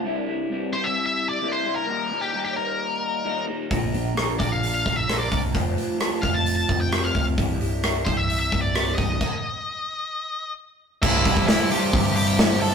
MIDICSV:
0, 0, Header, 1, 7, 480
1, 0, Start_track
1, 0, Tempo, 457317
1, 46, Time_signature, 4, 2, 24, 8
1, 13378, End_track
2, 0, Start_track
2, 0, Title_t, "Lead electric guitar"
2, 0, Program_c, 0, 29
2, 768, Note_on_c, 0, 72, 87
2, 880, Note_on_c, 0, 76, 84
2, 893, Note_off_c, 0, 72, 0
2, 1100, Note_off_c, 0, 76, 0
2, 1113, Note_on_c, 0, 76, 87
2, 1345, Note_off_c, 0, 76, 0
2, 1354, Note_on_c, 0, 74, 83
2, 1586, Note_off_c, 0, 74, 0
2, 1593, Note_on_c, 0, 72, 79
2, 1826, Note_off_c, 0, 72, 0
2, 1842, Note_on_c, 0, 70, 76
2, 2295, Note_off_c, 0, 70, 0
2, 2323, Note_on_c, 0, 67, 70
2, 2558, Note_off_c, 0, 67, 0
2, 2571, Note_on_c, 0, 67, 71
2, 2685, Note_off_c, 0, 67, 0
2, 2692, Note_on_c, 0, 70, 77
2, 3614, Note_off_c, 0, 70, 0
2, 4609, Note_on_c, 0, 74, 86
2, 4744, Note_off_c, 0, 74, 0
2, 4744, Note_on_c, 0, 77, 82
2, 4967, Note_off_c, 0, 77, 0
2, 4979, Note_on_c, 0, 77, 88
2, 5211, Note_off_c, 0, 77, 0
2, 5215, Note_on_c, 0, 76, 77
2, 5440, Note_off_c, 0, 76, 0
2, 5444, Note_on_c, 0, 74, 58
2, 5676, Note_off_c, 0, 74, 0
2, 6527, Note_on_c, 0, 77, 75
2, 6656, Note_on_c, 0, 81, 87
2, 6659, Note_off_c, 0, 77, 0
2, 6869, Note_off_c, 0, 81, 0
2, 6882, Note_on_c, 0, 81, 85
2, 7141, Note_off_c, 0, 81, 0
2, 7146, Note_on_c, 0, 79, 76
2, 7387, Note_on_c, 0, 77, 59
2, 7393, Note_off_c, 0, 79, 0
2, 7609, Note_off_c, 0, 77, 0
2, 8451, Note_on_c, 0, 72, 82
2, 8569, Note_off_c, 0, 72, 0
2, 8577, Note_on_c, 0, 76, 80
2, 8797, Note_off_c, 0, 76, 0
2, 8809, Note_on_c, 0, 76, 92
2, 9041, Note_off_c, 0, 76, 0
2, 9045, Note_on_c, 0, 74, 78
2, 9392, Note_off_c, 0, 74, 0
2, 9396, Note_on_c, 0, 75, 85
2, 11044, Note_off_c, 0, 75, 0
2, 11568, Note_on_c, 0, 76, 84
2, 11573, Note_on_c, 0, 64, 57
2, 12016, Note_off_c, 0, 64, 0
2, 12030, Note_off_c, 0, 76, 0
2, 12041, Note_on_c, 0, 76, 83
2, 12045, Note_on_c, 0, 64, 56
2, 12269, Note_off_c, 0, 64, 0
2, 12292, Note_off_c, 0, 76, 0
2, 12295, Note_on_c, 0, 67, 76
2, 12297, Note_on_c, 0, 79, 92
2, 12737, Note_off_c, 0, 67, 0
2, 12750, Note_off_c, 0, 79, 0
2, 12763, Note_on_c, 0, 79, 109
2, 12767, Note_on_c, 0, 67, 85
2, 13209, Note_off_c, 0, 67, 0
2, 13241, Note_off_c, 0, 79, 0
2, 13244, Note_on_c, 0, 69, 81
2, 13245, Note_on_c, 0, 81, 97
2, 13378, Note_off_c, 0, 69, 0
2, 13378, Note_off_c, 0, 81, 0
2, 13378, End_track
3, 0, Start_track
3, 0, Title_t, "Clean electric guitar"
3, 0, Program_c, 1, 27
3, 38, Note_on_c, 1, 36, 91
3, 45, Note_on_c, 1, 43, 83
3, 56, Note_on_c, 1, 48, 86
3, 59, Note_on_c, 1, 55, 90
3, 71, Note_on_c, 1, 64, 86
3, 265, Note_off_c, 1, 64, 0
3, 278, Note_on_c, 1, 64, 59
3, 295, Note_off_c, 1, 55, 0
3, 298, Note_off_c, 1, 48, 0
3, 299, Note_on_c, 1, 55, 57
3, 310, Note_on_c, 1, 48, 47
3, 507, Note_off_c, 1, 43, 0
3, 517, Note_off_c, 1, 48, 0
3, 519, Note_on_c, 1, 43, 73
3, 524, Note_off_c, 1, 36, 0
3, 529, Note_on_c, 1, 48, 69
3, 536, Note_off_c, 1, 55, 0
3, 537, Note_off_c, 1, 64, 0
3, 541, Note_on_c, 1, 55, 72
3, 549, Note_on_c, 1, 64, 69
3, 744, Note_off_c, 1, 64, 0
3, 757, Note_on_c, 1, 64, 64
3, 772, Note_off_c, 1, 55, 0
3, 776, Note_on_c, 1, 55, 63
3, 778, Note_off_c, 1, 48, 0
3, 790, Note_on_c, 1, 48, 56
3, 1006, Note_off_c, 1, 43, 0
3, 1472, Note_on_c, 1, 36, 80
3, 1478, Note_off_c, 1, 48, 0
3, 1483, Note_off_c, 1, 55, 0
3, 1483, Note_on_c, 1, 43, 76
3, 1491, Note_off_c, 1, 64, 0
3, 1491, Note_on_c, 1, 48, 86
3, 1496, Note_on_c, 1, 55, 82
3, 1504, Note_on_c, 1, 64, 89
3, 1699, Note_off_c, 1, 64, 0
3, 1712, Note_on_c, 1, 64, 62
3, 1718, Note_off_c, 1, 55, 0
3, 1731, Note_on_c, 1, 55, 61
3, 1733, Note_off_c, 1, 48, 0
3, 1746, Note_on_c, 1, 48, 55
3, 1948, Note_off_c, 1, 64, 0
3, 1949, Note_off_c, 1, 36, 0
3, 1953, Note_on_c, 1, 39, 80
3, 1954, Note_off_c, 1, 43, 0
3, 1958, Note_off_c, 1, 55, 0
3, 1958, Note_on_c, 1, 46, 84
3, 1964, Note_off_c, 1, 48, 0
3, 1968, Note_on_c, 1, 51, 83
3, 1976, Note_on_c, 1, 55, 93
3, 1980, Note_on_c, 1, 58, 87
3, 1986, Note_on_c, 1, 63, 98
3, 2186, Note_off_c, 1, 63, 0
3, 2199, Note_on_c, 1, 63, 57
3, 2209, Note_off_c, 1, 58, 0
3, 2213, Note_off_c, 1, 55, 0
3, 2213, Note_on_c, 1, 58, 58
3, 2221, Note_off_c, 1, 51, 0
3, 2225, Note_on_c, 1, 55, 52
3, 2234, Note_on_c, 1, 51, 53
3, 2430, Note_off_c, 1, 51, 0
3, 2440, Note_off_c, 1, 55, 0
3, 2442, Note_on_c, 1, 51, 65
3, 2445, Note_off_c, 1, 39, 0
3, 2447, Note_off_c, 1, 46, 0
3, 2453, Note_on_c, 1, 55, 67
3, 2458, Note_off_c, 1, 63, 0
3, 2459, Note_off_c, 1, 58, 0
3, 2463, Note_on_c, 1, 58, 74
3, 2470, Note_on_c, 1, 63, 67
3, 2661, Note_off_c, 1, 63, 0
3, 2673, Note_on_c, 1, 63, 68
3, 2681, Note_off_c, 1, 58, 0
3, 2682, Note_off_c, 1, 55, 0
3, 2686, Note_on_c, 1, 58, 63
3, 2691, Note_off_c, 1, 51, 0
3, 2694, Note_on_c, 1, 55, 55
3, 2704, Note_on_c, 1, 51, 57
3, 3394, Note_on_c, 1, 39, 80
3, 3400, Note_off_c, 1, 51, 0
3, 3403, Note_off_c, 1, 55, 0
3, 3404, Note_on_c, 1, 46, 81
3, 3412, Note_off_c, 1, 58, 0
3, 3412, Note_on_c, 1, 51, 82
3, 3416, Note_off_c, 1, 63, 0
3, 3416, Note_on_c, 1, 55, 89
3, 3425, Note_on_c, 1, 58, 89
3, 3429, Note_on_c, 1, 63, 93
3, 3626, Note_off_c, 1, 63, 0
3, 3635, Note_off_c, 1, 58, 0
3, 3638, Note_on_c, 1, 63, 68
3, 3642, Note_off_c, 1, 55, 0
3, 3647, Note_on_c, 1, 58, 61
3, 3655, Note_on_c, 1, 55, 54
3, 3656, Note_off_c, 1, 51, 0
3, 3669, Note_on_c, 1, 51, 49
3, 3860, Note_off_c, 1, 46, 0
3, 3868, Note_off_c, 1, 39, 0
3, 3872, Note_on_c, 1, 46, 83
3, 3874, Note_off_c, 1, 58, 0
3, 3874, Note_off_c, 1, 63, 0
3, 3882, Note_off_c, 1, 51, 0
3, 3883, Note_off_c, 1, 55, 0
3, 3883, Note_on_c, 1, 53, 82
3, 3886, Note_on_c, 1, 58, 88
3, 3895, Note_on_c, 1, 62, 81
3, 3899, Note_on_c, 1, 65, 86
3, 3903, Note_on_c, 1, 70, 84
3, 4102, Note_off_c, 1, 70, 0
3, 4115, Note_on_c, 1, 70, 63
3, 4122, Note_off_c, 1, 65, 0
3, 4123, Note_off_c, 1, 62, 0
3, 4126, Note_on_c, 1, 65, 53
3, 4132, Note_off_c, 1, 58, 0
3, 4136, Note_on_c, 1, 62, 60
3, 4145, Note_on_c, 1, 58, 49
3, 4338, Note_off_c, 1, 58, 0
3, 4351, Note_on_c, 1, 58, 65
3, 4357, Note_off_c, 1, 62, 0
3, 4367, Note_off_c, 1, 46, 0
3, 4369, Note_on_c, 1, 62, 65
3, 4371, Note_off_c, 1, 65, 0
3, 4373, Note_off_c, 1, 70, 0
3, 4375, Note_on_c, 1, 65, 73
3, 4386, Note_on_c, 1, 70, 64
3, 4584, Note_off_c, 1, 70, 0
3, 4597, Note_on_c, 1, 70, 60
3, 4607, Note_off_c, 1, 62, 0
3, 4608, Note_off_c, 1, 65, 0
3, 4612, Note_on_c, 1, 65, 58
3, 4619, Note_off_c, 1, 58, 0
3, 4619, Note_on_c, 1, 62, 58
3, 4632, Note_on_c, 1, 58, 48
3, 5322, Note_on_c, 1, 46, 82
3, 5323, Note_off_c, 1, 53, 0
3, 5323, Note_off_c, 1, 58, 0
3, 5327, Note_on_c, 1, 53, 85
3, 5328, Note_off_c, 1, 62, 0
3, 5336, Note_off_c, 1, 65, 0
3, 5336, Note_on_c, 1, 58, 88
3, 5341, Note_on_c, 1, 62, 84
3, 5343, Note_off_c, 1, 70, 0
3, 5349, Note_on_c, 1, 65, 94
3, 5355, Note_on_c, 1, 70, 96
3, 5550, Note_off_c, 1, 70, 0
3, 5562, Note_on_c, 1, 70, 62
3, 5563, Note_off_c, 1, 65, 0
3, 5576, Note_off_c, 1, 62, 0
3, 5576, Note_on_c, 1, 65, 59
3, 5584, Note_off_c, 1, 58, 0
3, 5588, Note_on_c, 1, 62, 59
3, 5597, Note_on_c, 1, 58, 50
3, 5792, Note_off_c, 1, 46, 0
3, 5796, Note_off_c, 1, 53, 0
3, 5797, Note_on_c, 1, 41, 89
3, 5798, Note_off_c, 1, 70, 0
3, 5804, Note_on_c, 1, 48, 84
3, 5805, Note_off_c, 1, 58, 0
3, 5805, Note_off_c, 1, 65, 0
3, 5809, Note_on_c, 1, 53, 86
3, 5811, Note_off_c, 1, 62, 0
3, 5821, Note_on_c, 1, 57, 82
3, 5826, Note_on_c, 1, 60, 92
3, 5829, Note_on_c, 1, 65, 88
3, 6025, Note_off_c, 1, 65, 0
3, 6037, Note_on_c, 1, 65, 58
3, 6042, Note_off_c, 1, 57, 0
3, 6043, Note_off_c, 1, 60, 0
3, 6047, Note_on_c, 1, 60, 60
3, 6052, Note_off_c, 1, 53, 0
3, 6055, Note_on_c, 1, 57, 59
3, 6064, Note_on_c, 1, 53, 50
3, 6264, Note_off_c, 1, 53, 0
3, 6277, Note_on_c, 1, 53, 65
3, 6278, Note_off_c, 1, 57, 0
3, 6290, Note_off_c, 1, 41, 0
3, 6291, Note_on_c, 1, 57, 67
3, 6294, Note_off_c, 1, 48, 0
3, 6294, Note_off_c, 1, 60, 0
3, 6297, Note_off_c, 1, 65, 0
3, 6299, Note_on_c, 1, 60, 67
3, 6309, Note_on_c, 1, 65, 70
3, 6503, Note_off_c, 1, 65, 0
3, 6516, Note_on_c, 1, 65, 69
3, 6526, Note_off_c, 1, 60, 0
3, 6530, Note_on_c, 1, 60, 60
3, 6531, Note_off_c, 1, 57, 0
3, 6536, Note_off_c, 1, 53, 0
3, 6543, Note_on_c, 1, 57, 56
3, 6549, Note_on_c, 1, 53, 54
3, 7242, Note_on_c, 1, 41, 80
3, 7245, Note_off_c, 1, 53, 0
3, 7250, Note_off_c, 1, 57, 0
3, 7251, Note_on_c, 1, 48, 83
3, 7254, Note_off_c, 1, 60, 0
3, 7258, Note_on_c, 1, 53, 82
3, 7261, Note_off_c, 1, 65, 0
3, 7262, Note_on_c, 1, 57, 92
3, 7267, Note_on_c, 1, 60, 81
3, 7273, Note_on_c, 1, 65, 93
3, 7474, Note_off_c, 1, 65, 0
3, 7487, Note_on_c, 1, 65, 61
3, 7492, Note_off_c, 1, 60, 0
3, 7503, Note_off_c, 1, 57, 0
3, 7505, Note_on_c, 1, 60, 55
3, 7507, Note_off_c, 1, 53, 0
3, 7516, Note_on_c, 1, 57, 54
3, 7520, Note_on_c, 1, 53, 53
3, 7719, Note_off_c, 1, 41, 0
3, 7721, Note_off_c, 1, 65, 0
3, 7724, Note_off_c, 1, 48, 0
3, 7727, Note_on_c, 1, 36, 79
3, 7731, Note_off_c, 1, 60, 0
3, 7736, Note_off_c, 1, 57, 0
3, 7738, Note_off_c, 1, 53, 0
3, 7738, Note_on_c, 1, 43, 87
3, 7743, Note_on_c, 1, 48, 87
3, 7752, Note_on_c, 1, 55, 95
3, 7758, Note_on_c, 1, 64, 96
3, 7953, Note_off_c, 1, 64, 0
3, 7965, Note_on_c, 1, 64, 62
3, 7973, Note_off_c, 1, 55, 0
3, 7984, Note_off_c, 1, 48, 0
3, 7986, Note_on_c, 1, 55, 57
3, 7997, Note_on_c, 1, 48, 49
3, 8194, Note_off_c, 1, 43, 0
3, 8206, Note_on_c, 1, 43, 66
3, 8207, Note_off_c, 1, 48, 0
3, 8216, Note_off_c, 1, 36, 0
3, 8218, Note_off_c, 1, 55, 0
3, 8220, Note_on_c, 1, 48, 67
3, 8226, Note_off_c, 1, 64, 0
3, 8230, Note_on_c, 1, 55, 72
3, 8239, Note_on_c, 1, 64, 74
3, 8434, Note_off_c, 1, 64, 0
3, 8446, Note_on_c, 1, 64, 64
3, 8450, Note_off_c, 1, 55, 0
3, 8462, Note_on_c, 1, 55, 59
3, 8468, Note_off_c, 1, 48, 0
3, 8481, Note_on_c, 1, 48, 53
3, 8696, Note_off_c, 1, 43, 0
3, 9174, Note_on_c, 1, 36, 79
3, 9177, Note_off_c, 1, 48, 0
3, 9182, Note_on_c, 1, 43, 76
3, 9186, Note_off_c, 1, 55, 0
3, 9190, Note_on_c, 1, 48, 94
3, 9195, Note_off_c, 1, 64, 0
3, 9198, Note_on_c, 1, 55, 88
3, 9207, Note_on_c, 1, 64, 92
3, 9407, Note_off_c, 1, 64, 0
3, 9420, Note_on_c, 1, 64, 67
3, 9429, Note_off_c, 1, 55, 0
3, 9439, Note_off_c, 1, 48, 0
3, 9441, Note_on_c, 1, 55, 59
3, 9452, Note_on_c, 1, 48, 49
3, 9645, Note_off_c, 1, 36, 0
3, 9648, Note_off_c, 1, 64, 0
3, 9649, Note_off_c, 1, 43, 0
3, 9658, Note_off_c, 1, 55, 0
3, 9664, Note_off_c, 1, 48, 0
3, 13378, End_track
4, 0, Start_track
4, 0, Title_t, "Distorted electric guitar"
4, 0, Program_c, 2, 30
4, 11568, Note_on_c, 2, 36, 89
4, 11577, Note_on_c, 2, 43, 89
4, 11581, Note_on_c, 2, 48, 93
4, 11587, Note_on_c, 2, 55, 100
4, 11594, Note_on_c, 2, 64, 100
4, 13224, Note_off_c, 2, 36, 0
4, 13228, Note_off_c, 2, 43, 0
4, 13229, Note_off_c, 2, 64, 0
4, 13231, Note_off_c, 2, 48, 0
4, 13233, Note_off_c, 2, 55, 0
4, 13242, Note_on_c, 2, 64, 95
4, 13248, Note_on_c, 2, 55, 91
4, 13251, Note_on_c, 2, 48, 81
4, 13255, Note_on_c, 2, 43, 81
4, 13265, Note_on_c, 2, 36, 81
4, 13378, Note_off_c, 2, 36, 0
4, 13378, Note_off_c, 2, 43, 0
4, 13378, Note_off_c, 2, 48, 0
4, 13378, Note_off_c, 2, 55, 0
4, 13378, Note_off_c, 2, 64, 0
4, 13378, End_track
5, 0, Start_track
5, 0, Title_t, "Overdriven electric guitar"
5, 0, Program_c, 3, 29
5, 12284, Note_on_c, 3, 48, 86
5, 12295, Note_on_c, 3, 43, 82
5, 12306, Note_on_c, 3, 36, 70
5, 13378, Note_off_c, 3, 36, 0
5, 13378, Note_off_c, 3, 43, 0
5, 13378, Note_off_c, 3, 48, 0
5, 13378, End_track
6, 0, Start_track
6, 0, Title_t, "Picked electric bass"
6, 0, Program_c, 4, 34
6, 3891, Note_on_c, 4, 34, 77
6, 4107, Note_off_c, 4, 34, 0
6, 4138, Note_on_c, 4, 34, 70
6, 4564, Note_off_c, 4, 34, 0
6, 4612, Note_on_c, 4, 34, 77
6, 5040, Note_off_c, 4, 34, 0
6, 5100, Note_on_c, 4, 34, 83
6, 5525, Note_off_c, 4, 34, 0
6, 5578, Note_on_c, 4, 36, 90
6, 5792, Note_off_c, 4, 36, 0
6, 5818, Note_on_c, 4, 29, 84
6, 6032, Note_off_c, 4, 29, 0
6, 6538, Note_on_c, 4, 29, 86
6, 6965, Note_off_c, 4, 29, 0
6, 7025, Note_on_c, 4, 29, 89
6, 7449, Note_off_c, 4, 29, 0
6, 7503, Note_on_c, 4, 26, 82
6, 7716, Note_off_c, 4, 26, 0
6, 7747, Note_on_c, 4, 24, 79
6, 7958, Note_off_c, 4, 24, 0
6, 7981, Note_on_c, 4, 24, 75
6, 8407, Note_off_c, 4, 24, 0
6, 8463, Note_on_c, 4, 24, 69
6, 8888, Note_off_c, 4, 24, 0
6, 8941, Note_on_c, 4, 24, 84
6, 9367, Note_off_c, 4, 24, 0
6, 9429, Note_on_c, 4, 24, 83
6, 9639, Note_off_c, 4, 24, 0
6, 11575, Note_on_c, 4, 24, 95
6, 11787, Note_off_c, 4, 24, 0
6, 11812, Note_on_c, 4, 36, 84
6, 11919, Note_off_c, 4, 36, 0
6, 11930, Note_on_c, 4, 36, 100
6, 12142, Note_off_c, 4, 36, 0
6, 12523, Note_on_c, 4, 31, 96
6, 13366, Note_off_c, 4, 31, 0
6, 13378, End_track
7, 0, Start_track
7, 0, Title_t, "Drums"
7, 3892, Note_on_c, 9, 46, 50
7, 3893, Note_on_c, 9, 36, 87
7, 3997, Note_off_c, 9, 46, 0
7, 3998, Note_off_c, 9, 36, 0
7, 4139, Note_on_c, 9, 46, 44
7, 4244, Note_off_c, 9, 46, 0
7, 4378, Note_on_c, 9, 46, 56
7, 4382, Note_on_c, 9, 37, 94
7, 4483, Note_off_c, 9, 46, 0
7, 4487, Note_off_c, 9, 37, 0
7, 4617, Note_on_c, 9, 36, 71
7, 4620, Note_on_c, 9, 46, 47
7, 4722, Note_off_c, 9, 36, 0
7, 4725, Note_off_c, 9, 46, 0
7, 4863, Note_on_c, 9, 46, 59
7, 4968, Note_off_c, 9, 46, 0
7, 5100, Note_on_c, 9, 36, 69
7, 5106, Note_on_c, 9, 46, 44
7, 5205, Note_off_c, 9, 36, 0
7, 5211, Note_off_c, 9, 46, 0
7, 5344, Note_on_c, 9, 46, 66
7, 5348, Note_on_c, 9, 37, 100
7, 5449, Note_off_c, 9, 46, 0
7, 5453, Note_off_c, 9, 37, 0
7, 5582, Note_on_c, 9, 36, 74
7, 5583, Note_on_c, 9, 46, 47
7, 5687, Note_off_c, 9, 36, 0
7, 5687, Note_off_c, 9, 46, 0
7, 5822, Note_on_c, 9, 36, 91
7, 5825, Note_on_c, 9, 46, 56
7, 5927, Note_off_c, 9, 36, 0
7, 5930, Note_off_c, 9, 46, 0
7, 6065, Note_on_c, 9, 46, 46
7, 6170, Note_off_c, 9, 46, 0
7, 6301, Note_on_c, 9, 46, 59
7, 6305, Note_on_c, 9, 37, 94
7, 6406, Note_off_c, 9, 46, 0
7, 6410, Note_off_c, 9, 37, 0
7, 6541, Note_on_c, 9, 36, 79
7, 6542, Note_on_c, 9, 46, 43
7, 6646, Note_off_c, 9, 36, 0
7, 6646, Note_off_c, 9, 46, 0
7, 6783, Note_on_c, 9, 46, 66
7, 6888, Note_off_c, 9, 46, 0
7, 7023, Note_on_c, 9, 36, 73
7, 7023, Note_on_c, 9, 46, 45
7, 7128, Note_off_c, 9, 36, 0
7, 7128, Note_off_c, 9, 46, 0
7, 7266, Note_on_c, 9, 46, 59
7, 7270, Note_on_c, 9, 37, 101
7, 7371, Note_off_c, 9, 46, 0
7, 7375, Note_off_c, 9, 37, 0
7, 7503, Note_on_c, 9, 46, 42
7, 7504, Note_on_c, 9, 36, 76
7, 7608, Note_off_c, 9, 46, 0
7, 7609, Note_off_c, 9, 36, 0
7, 7744, Note_on_c, 9, 46, 52
7, 7745, Note_on_c, 9, 36, 84
7, 7849, Note_off_c, 9, 46, 0
7, 7850, Note_off_c, 9, 36, 0
7, 7985, Note_on_c, 9, 46, 43
7, 8090, Note_off_c, 9, 46, 0
7, 8222, Note_on_c, 9, 46, 57
7, 8227, Note_on_c, 9, 37, 92
7, 8327, Note_off_c, 9, 46, 0
7, 8332, Note_off_c, 9, 37, 0
7, 8465, Note_on_c, 9, 36, 75
7, 8465, Note_on_c, 9, 46, 42
7, 8569, Note_off_c, 9, 46, 0
7, 8570, Note_off_c, 9, 36, 0
7, 8708, Note_on_c, 9, 46, 62
7, 8813, Note_off_c, 9, 46, 0
7, 8944, Note_on_c, 9, 46, 43
7, 8946, Note_on_c, 9, 36, 73
7, 9049, Note_off_c, 9, 46, 0
7, 9051, Note_off_c, 9, 36, 0
7, 9186, Note_on_c, 9, 46, 62
7, 9190, Note_on_c, 9, 37, 104
7, 9291, Note_off_c, 9, 46, 0
7, 9295, Note_off_c, 9, 37, 0
7, 9426, Note_on_c, 9, 36, 79
7, 9429, Note_on_c, 9, 46, 45
7, 9531, Note_off_c, 9, 36, 0
7, 9534, Note_off_c, 9, 46, 0
7, 9665, Note_on_c, 9, 49, 72
7, 9666, Note_on_c, 9, 36, 86
7, 9770, Note_off_c, 9, 49, 0
7, 9771, Note_off_c, 9, 36, 0
7, 11575, Note_on_c, 9, 36, 99
7, 11575, Note_on_c, 9, 49, 116
7, 11680, Note_off_c, 9, 36, 0
7, 11680, Note_off_c, 9, 49, 0
7, 11813, Note_on_c, 9, 36, 88
7, 11815, Note_on_c, 9, 46, 59
7, 11918, Note_off_c, 9, 36, 0
7, 11920, Note_off_c, 9, 46, 0
7, 11931, Note_on_c, 9, 36, 91
7, 12036, Note_off_c, 9, 36, 0
7, 12051, Note_on_c, 9, 46, 79
7, 12055, Note_on_c, 9, 38, 117
7, 12156, Note_off_c, 9, 46, 0
7, 12160, Note_off_c, 9, 38, 0
7, 12287, Note_on_c, 9, 46, 61
7, 12392, Note_off_c, 9, 46, 0
7, 12526, Note_on_c, 9, 36, 127
7, 12528, Note_on_c, 9, 46, 92
7, 12631, Note_off_c, 9, 36, 0
7, 12633, Note_off_c, 9, 46, 0
7, 12764, Note_on_c, 9, 46, 67
7, 12869, Note_off_c, 9, 46, 0
7, 13002, Note_on_c, 9, 46, 94
7, 13006, Note_on_c, 9, 38, 115
7, 13107, Note_off_c, 9, 46, 0
7, 13111, Note_off_c, 9, 38, 0
7, 13239, Note_on_c, 9, 46, 72
7, 13344, Note_off_c, 9, 46, 0
7, 13378, End_track
0, 0, End_of_file